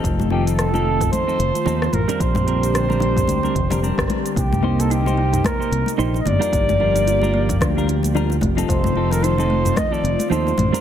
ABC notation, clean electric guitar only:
X:1
M:4/4
L:1/16
Q:"Swing 16ths" 1/4=111
K:Cdor
V:1 name="Clean electric guitar"
[F,CEA]2 [F,CEA]3 [F,CEA]4 [F,CEA] z2 [F,CEA] z2 [G,CDB]- | [G,CDB]2 [G,CDB]3 [G,CDB]4 [G,CDB] z [G,CDB] [G,CDB]4 | z2 [B,EGc]3 [B,EGc]4 [B,EGc] z2 [B,EGc] z2 [G,DFB]- | [G,DFB]2 [G,DFB]3 [G,DFB]4 [G,DFB] z2 [G,DFB] z2 [F,CEA]- |
[F,CEA]2 [F,CEA]3 [F,CEA]4 [F,CEA] z2 [F,CEA] z2 [G,CDB] |]